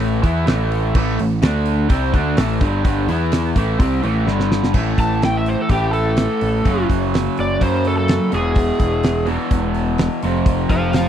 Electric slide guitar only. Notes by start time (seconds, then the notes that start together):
5.00 A5
5.25 G5
5.37 E5
5.48 C5
5.62 A4
5.72 G4
5.93 A4
7.40 D5
7.62 C5
7.88 A4
7.98 A4
8.35 G#4
10.71 C5 F5
10.94 C5 F5